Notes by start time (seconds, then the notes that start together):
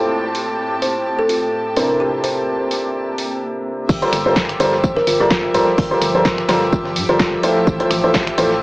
Already playing: A2 A3 C4 E4 F4 G4 A4 C5 A5
0.35 open hi-hat
0.50 A4
0.82 C5, open hi-hat
1.19 A4
1.29 F4, open hi-hat
1.76 C3 D4 E4 A#4 C5, open hi-hat
1.89 A#4
2.00 G4
2.16 A#3
2.24 C5, open hi-hat
2.71 open hi-hat
3.18 open hi-hat
3.89 G1 F3 G4 E5, kick, tambourine, crash
4.02 G3 F4 A4 A#4 C5, closed hi-hat
4.13 G1, finger snap, open hi-hat, tambourine
4.26 G3 F4 A4 A#4 C5
4.36 kick, snare, tambourine
4.49 finger snap, closed hi-hat
4.60 G1 G3 F4 A4 A#4 C5, open hi-hat, tambourine
4.68 C5 A5
4.73 snare
4.84 kick, tambourine
4.96 A#4, snare
5.07 G1 F4, open hi-hat, tambourine
5.20 G3 F4 A4 A#4 D5
5.30 F4, kick, snare, tambourine
5.54 D1 G3 F4 A4 A#4 C5, snare, open hi-hat, tambourine
5.78 G1, kick, open hi-hat
5.91 G3 F4 A4 A#4 C5
6.02 G1, finger snap, snare, open hi-hat, tambourine
6.15 G3 F4 A4 A#4 C5
6.25 kick, snare, tambourine
6.38 finger snap, snare
6.49 G1 G3 F4 A4 A#4 C5, snare, open hi-hat, tambourine
6.62 snare
6.73 kick, tambourine
6.85 snare
6.96 G2, open hi-hat, tambourine
7.09 G1 G3 F4 A4 A#4 C5, snare
7.19 kick, snare, tambourine
7.43 A3 E4 F4 A4 C5, open hi-hat, tambourine
7.67 A1, kick, tambourine
7.80 A3 E4 F4 A4 C5, closed hi-hat
7.91 A1, finger snap, open hi-hat, tambourine
8.04 A3 E4 F4 A4 C5
8.14 kick, snare, tambourine
8.27 E5, finger snap, closed hi-hat
8.38 A1 A3 E4 F4 A4 C5, open hi-hat, tambourine
8.51 snare